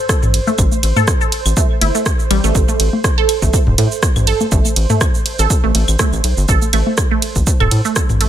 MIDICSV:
0, 0, Header, 1, 5, 480
1, 0, Start_track
1, 0, Key_signature, 0, "minor"
1, 0, Tempo, 491803
1, 570, Time_signature, 4, 2, 24, 8
1, 8090, End_track
2, 0, Start_track
2, 0, Title_t, "Synth texture"
2, 0, Program_c, 0, 99
2, 0, Note_on_c, 0, 72, 87
2, 8090, Note_off_c, 0, 72, 0
2, 8090, End_track
3, 0, Start_track
3, 0, Title_t, "Synth pluck"
3, 0, Program_c, 1, 84
3, 91, Note_on_c, 1, 69, 84
3, 129, Note_off_c, 1, 69, 0
3, 463, Note_on_c, 1, 57, 80
3, 494, Note_off_c, 1, 57, 0
3, 942, Note_on_c, 1, 69, 101
3, 1021, Note_off_c, 1, 69, 0
3, 1182, Note_on_c, 1, 69, 82
3, 1213, Note_off_c, 1, 69, 0
3, 1531, Note_on_c, 1, 57, 89
3, 1568, Note_off_c, 1, 57, 0
3, 1770, Note_on_c, 1, 64, 74
3, 1808, Note_off_c, 1, 64, 0
3, 1901, Note_on_c, 1, 57, 81
3, 1980, Note_off_c, 1, 57, 0
3, 2250, Note_on_c, 1, 55, 104
3, 2313, Note_off_c, 1, 55, 0
3, 2381, Note_on_c, 1, 57, 106
3, 2460, Note_off_c, 1, 57, 0
3, 2621, Note_on_c, 1, 57, 80
3, 2653, Note_off_c, 1, 57, 0
3, 3102, Note_on_c, 1, 69, 107
3, 3180, Note_off_c, 1, 69, 0
3, 3342, Note_on_c, 1, 57, 78
3, 3394, Note_off_c, 1, 57, 0
3, 3692, Note_on_c, 1, 57, 75
3, 3729, Note_off_c, 1, 57, 0
3, 4172, Note_on_c, 1, 69, 103
3, 4266, Note_off_c, 1, 69, 0
3, 4411, Note_on_c, 1, 57, 83
3, 4474, Note_off_c, 1, 57, 0
3, 4782, Note_on_c, 1, 57, 80
3, 4813, Note_off_c, 1, 57, 0
3, 5262, Note_on_c, 1, 69, 106
3, 5341, Note_off_c, 1, 69, 0
3, 5502, Note_on_c, 1, 57, 82
3, 5554, Note_off_c, 1, 57, 0
3, 5850, Note_on_c, 1, 57, 83
3, 5888, Note_off_c, 1, 57, 0
3, 6330, Note_on_c, 1, 69, 105
3, 6425, Note_off_c, 1, 69, 0
3, 6571, Note_on_c, 1, 57, 78
3, 6634, Note_off_c, 1, 57, 0
3, 6941, Note_on_c, 1, 57, 82
3, 6973, Note_off_c, 1, 57, 0
3, 7421, Note_on_c, 1, 69, 105
3, 7500, Note_off_c, 1, 69, 0
3, 7661, Note_on_c, 1, 57, 81
3, 7714, Note_off_c, 1, 57, 0
3, 8011, Note_on_c, 1, 57, 80
3, 8048, Note_off_c, 1, 57, 0
3, 8090, End_track
4, 0, Start_track
4, 0, Title_t, "Analog synth bass"
4, 0, Program_c, 2, 38
4, 222, Note_on_c, 2, 33, 86
4, 389, Note_off_c, 2, 33, 0
4, 570, Note_on_c, 2, 33, 99
4, 665, Note_off_c, 2, 33, 0
4, 810, Note_on_c, 2, 33, 83
4, 905, Note_off_c, 2, 33, 0
4, 1421, Note_on_c, 2, 33, 88
4, 1500, Note_off_c, 2, 33, 0
4, 1771, Note_on_c, 2, 31, 82
4, 1865, Note_off_c, 2, 31, 0
4, 2250, Note_on_c, 2, 33, 95
4, 2344, Note_off_c, 2, 33, 0
4, 2381, Note_on_c, 2, 33, 106
4, 2460, Note_off_c, 2, 33, 0
4, 2490, Note_on_c, 2, 33, 99
4, 2585, Note_off_c, 2, 33, 0
4, 2730, Note_on_c, 2, 33, 81
4, 2825, Note_off_c, 2, 33, 0
4, 3341, Note_on_c, 2, 33, 88
4, 3420, Note_off_c, 2, 33, 0
4, 3580, Note_on_c, 2, 28, 98
4, 3659, Note_off_c, 2, 28, 0
4, 3690, Note_on_c, 2, 45, 83
4, 3784, Note_off_c, 2, 45, 0
4, 4060, Note_on_c, 2, 33, 89
4, 4228, Note_off_c, 2, 33, 0
4, 4410, Note_on_c, 2, 33, 102
4, 4505, Note_off_c, 2, 33, 0
4, 4649, Note_on_c, 2, 33, 82
4, 4744, Note_off_c, 2, 33, 0
4, 5261, Note_on_c, 2, 33, 87
4, 5340, Note_off_c, 2, 33, 0
4, 5501, Note_on_c, 2, 33, 94
4, 5580, Note_off_c, 2, 33, 0
4, 5609, Note_on_c, 2, 33, 90
4, 5704, Note_off_c, 2, 33, 0
4, 5740, Note_on_c, 2, 33, 80
4, 5819, Note_off_c, 2, 33, 0
4, 5980, Note_on_c, 2, 33, 108
4, 6059, Note_off_c, 2, 33, 0
4, 6089, Note_on_c, 2, 35, 86
4, 6184, Note_off_c, 2, 35, 0
4, 6220, Note_on_c, 2, 31, 101
4, 6299, Note_off_c, 2, 31, 0
4, 6330, Note_on_c, 2, 33, 101
4, 6425, Note_off_c, 2, 33, 0
4, 6570, Note_on_c, 2, 33, 80
4, 6664, Note_off_c, 2, 33, 0
4, 7181, Note_on_c, 2, 33, 87
4, 7260, Note_off_c, 2, 33, 0
4, 7421, Note_on_c, 2, 28, 100
4, 7500, Note_off_c, 2, 28, 0
4, 7530, Note_on_c, 2, 45, 83
4, 7624, Note_off_c, 2, 45, 0
4, 7900, Note_on_c, 2, 33, 90
4, 8068, Note_off_c, 2, 33, 0
4, 8090, End_track
5, 0, Start_track
5, 0, Title_t, "Drums"
5, 90, Note_on_c, 9, 36, 127
5, 91, Note_on_c, 9, 37, 95
5, 91, Note_on_c, 9, 82, 64
5, 188, Note_off_c, 9, 36, 0
5, 188, Note_off_c, 9, 37, 0
5, 188, Note_off_c, 9, 82, 0
5, 221, Note_on_c, 9, 45, 97
5, 222, Note_on_c, 9, 82, 29
5, 319, Note_off_c, 9, 45, 0
5, 319, Note_off_c, 9, 82, 0
5, 331, Note_on_c, 9, 42, 98
5, 331, Note_on_c, 9, 51, 71
5, 429, Note_off_c, 9, 42, 0
5, 429, Note_off_c, 9, 51, 0
5, 461, Note_on_c, 9, 63, 82
5, 462, Note_on_c, 9, 82, 29
5, 559, Note_off_c, 9, 63, 0
5, 559, Note_off_c, 9, 82, 0
5, 570, Note_on_c, 9, 36, 126
5, 570, Note_on_c, 9, 75, 64
5, 571, Note_on_c, 9, 82, 61
5, 667, Note_off_c, 9, 75, 0
5, 668, Note_off_c, 9, 36, 0
5, 669, Note_off_c, 9, 82, 0
5, 701, Note_on_c, 9, 63, 59
5, 702, Note_on_c, 9, 82, 41
5, 798, Note_off_c, 9, 63, 0
5, 800, Note_off_c, 9, 82, 0
5, 811, Note_on_c, 9, 42, 97
5, 811, Note_on_c, 9, 51, 85
5, 909, Note_off_c, 9, 42, 0
5, 909, Note_off_c, 9, 51, 0
5, 940, Note_on_c, 9, 45, 90
5, 940, Note_on_c, 9, 63, 84
5, 942, Note_on_c, 9, 82, 28
5, 1038, Note_off_c, 9, 45, 0
5, 1038, Note_off_c, 9, 63, 0
5, 1040, Note_off_c, 9, 82, 0
5, 1050, Note_on_c, 9, 36, 124
5, 1051, Note_on_c, 9, 37, 90
5, 1051, Note_on_c, 9, 82, 59
5, 1148, Note_off_c, 9, 36, 0
5, 1148, Note_off_c, 9, 37, 0
5, 1148, Note_off_c, 9, 82, 0
5, 1182, Note_on_c, 9, 82, 29
5, 1280, Note_off_c, 9, 82, 0
5, 1291, Note_on_c, 9, 42, 100
5, 1291, Note_on_c, 9, 51, 73
5, 1388, Note_off_c, 9, 42, 0
5, 1388, Note_off_c, 9, 51, 0
5, 1422, Note_on_c, 9, 75, 62
5, 1422, Note_on_c, 9, 82, 41
5, 1519, Note_off_c, 9, 75, 0
5, 1520, Note_off_c, 9, 82, 0
5, 1530, Note_on_c, 9, 36, 126
5, 1532, Note_on_c, 9, 82, 60
5, 1628, Note_off_c, 9, 36, 0
5, 1629, Note_off_c, 9, 82, 0
5, 1770, Note_on_c, 9, 63, 58
5, 1771, Note_on_c, 9, 42, 97
5, 1771, Note_on_c, 9, 51, 84
5, 1868, Note_off_c, 9, 63, 0
5, 1869, Note_off_c, 9, 42, 0
5, 1869, Note_off_c, 9, 51, 0
5, 1902, Note_on_c, 9, 82, 29
5, 2000, Note_off_c, 9, 82, 0
5, 2010, Note_on_c, 9, 36, 123
5, 2011, Note_on_c, 9, 37, 96
5, 2011, Note_on_c, 9, 82, 60
5, 2108, Note_off_c, 9, 36, 0
5, 2109, Note_off_c, 9, 37, 0
5, 2109, Note_off_c, 9, 82, 0
5, 2142, Note_on_c, 9, 82, 29
5, 2240, Note_off_c, 9, 82, 0
5, 2250, Note_on_c, 9, 75, 65
5, 2251, Note_on_c, 9, 42, 97
5, 2251, Note_on_c, 9, 51, 72
5, 2348, Note_off_c, 9, 75, 0
5, 2349, Note_off_c, 9, 42, 0
5, 2349, Note_off_c, 9, 51, 0
5, 2381, Note_on_c, 9, 82, 29
5, 2479, Note_off_c, 9, 82, 0
5, 2490, Note_on_c, 9, 36, 125
5, 2490, Note_on_c, 9, 82, 59
5, 2587, Note_off_c, 9, 36, 0
5, 2588, Note_off_c, 9, 82, 0
5, 2621, Note_on_c, 9, 63, 60
5, 2621, Note_on_c, 9, 82, 41
5, 2718, Note_off_c, 9, 63, 0
5, 2719, Note_off_c, 9, 82, 0
5, 2730, Note_on_c, 9, 42, 96
5, 2730, Note_on_c, 9, 51, 90
5, 2828, Note_off_c, 9, 42, 0
5, 2828, Note_off_c, 9, 51, 0
5, 2861, Note_on_c, 9, 63, 77
5, 2958, Note_off_c, 9, 63, 0
5, 2970, Note_on_c, 9, 36, 122
5, 2970, Note_on_c, 9, 37, 91
5, 2970, Note_on_c, 9, 82, 60
5, 3067, Note_off_c, 9, 36, 0
5, 3068, Note_off_c, 9, 37, 0
5, 3068, Note_off_c, 9, 82, 0
5, 3210, Note_on_c, 9, 42, 94
5, 3210, Note_on_c, 9, 51, 77
5, 3210, Note_on_c, 9, 75, 63
5, 3307, Note_off_c, 9, 75, 0
5, 3308, Note_off_c, 9, 42, 0
5, 3308, Note_off_c, 9, 51, 0
5, 3341, Note_on_c, 9, 36, 62
5, 3341, Note_on_c, 9, 82, 41
5, 3438, Note_off_c, 9, 36, 0
5, 3439, Note_off_c, 9, 82, 0
5, 3450, Note_on_c, 9, 36, 125
5, 3450, Note_on_c, 9, 82, 62
5, 3547, Note_off_c, 9, 36, 0
5, 3548, Note_off_c, 9, 82, 0
5, 3580, Note_on_c, 9, 45, 78
5, 3678, Note_off_c, 9, 45, 0
5, 3691, Note_on_c, 9, 42, 96
5, 3691, Note_on_c, 9, 51, 87
5, 3788, Note_off_c, 9, 42, 0
5, 3788, Note_off_c, 9, 51, 0
5, 3822, Note_on_c, 9, 82, 28
5, 3919, Note_off_c, 9, 82, 0
5, 3930, Note_on_c, 9, 36, 121
5, 3930, Note_on_c, 9, 37, 90
5, 3930, Note_on_c, 9, 82, 61
5, 4028, Note_off_c, 9, 36, 0
5, 4028, Note_off_c, 9, 37, 0
5, 4028, Note_off_c, 9, 82, 0
5, 4061, Note_on_c, 9, 45, 91
5, 4061, Note_on_c, 9, 75, 65
5, 4061, Note_on_c, 9, 82, 28
5, 4158, Note_off_c, 9, 45, 0
5, 4158, Note_off_c, 9, 75, 0
5, 4158, Note_off_c, 9, 82, 0
5, 4169, Note_on_c, 9, 42, 94
5, 4169, Note_on_c, 9, 51, 76
5, 4267, Note_off_c, 9, 42, 0
5, 4267, Note_off_c, 9, 51, 0
5, 4300, Note_on_c, 9, 63, 76
5, 4300, Note_on_c, 9, 82, 29
5, 4397, Note_off_c, 9, 82, 0
5, 4398, Note_off_c, 9, 63, 0
5, 4409, Note_on_c, 9, 82, 62
5, 4410, Note_on_c, 9, 36, 118
5, 4507, Note_off_c, 9, 82, 0
5, 4508, Note_off_c, 9, 36, 0
5, 4541, Note_on_c, 9, 63, 56
5, 4541, Note_on_c, 9, 82, 43
5, 4638, Note_off_c, 9, 63, 0
5, 4639, Note_off_c, 9, 82, 0
5, 4649, Note_on_c, 9, 42, 93
5, 4649, Note_on_c, 9, 51, 90
5, 4747, Note_off_c, 9, 42, 0
5, 4747, Note_off_c, 9, 51, 0
5, 4781, Note_on_c, 9, 45, 89
5, 4781, Note_on_c, 9, 63, 75
5, 4781, Note_on_c, 9, 82, 30
5, 4878, Note_off_c, 9, 45, 0
5, 4878, Note_off_c, 9, 63, 0
5, 4879, Note_off_c, 9, 82, 0
5, 4890, Note_on_c, 9, 36, 118
5, 4890, Note_on_c, 9, 37, 88
5, 4890, Note_on_c, 9, 75, 69
5, 4890, Note_on_c, 9, 82, 64
5, 4988, Note_off_c, 9, 36, 0
5, 4988, Note_off_c, 9, 37, 0
5, 4988, Note_off_c, 9, 75, 0
5, 4988, Note_off_c, 9, 82, 0
5, 5022, Note_on_c, 9, 82, 30
5, 5119, Note_off_c, 9, 82, 0
5, 5131, Note_on_c, 9, 42, 92
5, 5131, Note_on_c, 9, 51, 78
5, 5228, Note_off_c, 9, 42, 0
5, 5228, Note_off_c, 9, 51, 0
5, 5261, Note_on_c, 9, 82, 43
5, 5359, Note_off_c, 9, 82, 0
5, 5370, Note_on_c, 9, 36, 116
5, 5370, Note_on_c, 9, 82, 63
5, 5468, Note_off_c, 9, 36, 0
5, 5468, Note_off_c, 9, 82, 0
5, 5610, Note_on_c, 9, 42, 92
5, 5610, Note_on_c, 9, 51, 91
5, 5611, Note_on_c, 9, 63, 55
5, 5707, Note_off_c, 9, 42, 0
5, 5707, Note_off_c, 9, 51, 0
5, 5708, Note_off_c, 9, 63, 0
5, 5741, Note_on_c, 9, 75, 70
5, 5741, Note_on_c, 9, 82, 31
5, 5838, Note_off_c, 9, 82, 0
5, 5839, Note_off_c, 9, 75, 0
5, 5849, Note_on_c, 9, 37, 91
5, 5849, Note_on_c, 9, 82, 64
5, 5850, Note_on_c, 9, 36, 120
5, 5947, Note_off_c, 9, 37, 0
5, 5947, Note_off_c, 9, 82, 0
5, 5948, Note_off_c, 9, 36, 0
5, 5980, Note_on_c, 9, 82, 30
5, 6078, Note_off_c, 9, 82, 0
5, 6090, Note_on_c, 9, 42, 92
5, 6090, Note_on_c, 9, 51, 76
5, 6187, Note_off_c, 9, 42, 0
5, 6187, Note_off_c, 9, 51, 0
5, 6220, Note_on_c, 9, 82, 29
5, 6318, Note_off_c, 9, 82, 0
5, 6329, Note_on_c, 9, 82, 65
5, 6330, Note_on_c, 9, 36, 116
5, 6427, Note_off_c, 9, 82, 0
5, 6428, Note_off_c, 9, 36, 0
5, 6461, Note_on_c, 9, 63, 55
5, 6461, Note_on_c, 9, 82, 45
5, 6558, Note_off_c, 9, 82, 0
5, 6559, Note_off_c, 9, 63, 0
5, 6569, Note_on_c, 9, 42, 92
5, 6569, Note_on_c, 9, 51, 90
5, 6570, Note_on_c, 9, 75, 69
5, 6666, Note_off_c, 9, 42, 0
5, 6666, Note_off_c, 9, 51, 0
5, 6667, Note_off_c, 9, 75, 0
5, 6701, Note_on_c, 9, 63, 74
5, 6798, Note_off_c, 9, 63, 0
5, 6809, Note_on_c, 9, 37, 90
5, 6809, Note_on_c, 9, 82, 66
5, 6810, Note_on_c, 9, 36, 120
5, 6906, Note_off_c, 9, 37, 0
5, 6906, Note_off_c, 9, 82, 0
5, 6908, Note_off_c, 9, 36, 0
5, 7049, Note_on_c, 9, 42, 91
5, 7049, Note_on_c, 9, 51, 81
5, 7147, Note_off_c, 9, 42, 0
5, 7147, Note_off_c, 9, 51, 0
5, 7180, Note_on_c, 9, 82, 45
5, 7181, Note_on_c, 9, 36, 60
5, 7278, Note_off_c, 9, 82, 0
5, 7279, Note_off_c, 9, 36, 0
5, 7289, Note_on_c, 9, 82, 64
5, 7290, Note_on_c, 9, 36, 114
5, 7387, Note_off_c, 9, 82, 0
5, 7388, Note_off_c, 9, 36, 0
5, 7421, Note_on_c, 9, 45, 82
5, 7421, Note_on_c, 9, 75, 71
5, 7519, Note_off_c, 9, 45, 0
5, 7519, Note_off_c, 9, 75, 0
5, 7529, Note_on_c, 9, 42, 92
5, 7529, Note_on_c, 9, 51, 92
5, 7627, Note_off_c, 9, 42, 0
5, 7627, Note_off_c, 9, 51, 0
5, 7661, Note_on_c, 9, 82, 30
5, 7758, Note_off_c, 9, 82, 0
5, 7770, Note_on_c, 9, 36, 113
5, 7770, Note_on_c, 9, 37, 91
5, 7770, Note_on_c, 9, 82, 69
5, 7867, Note_off_c, 9, 37, 0
5, 7867, Note_off_c, 9, 82, 0
5, 7868, Note_off_c, 9, 36, 0
5, 7900, Note_on_c, 9, 45, 96
5, 7902, Note_on_c, 9, 82, 30
5, 7998, Note_off_c, 9, 45, 0
5, 7999, Note_off_c, 9, 82, 0
5, 8009, Note_on_c, 9, 42, 90
5, 8009, Note_on_c, 9, 51, 77
5, 8090, Note_off_c, 9, 42, 0
5, 8090, Note_off_c, 9, 51, 0
5, 8090, End_track
0, 0, End_of_file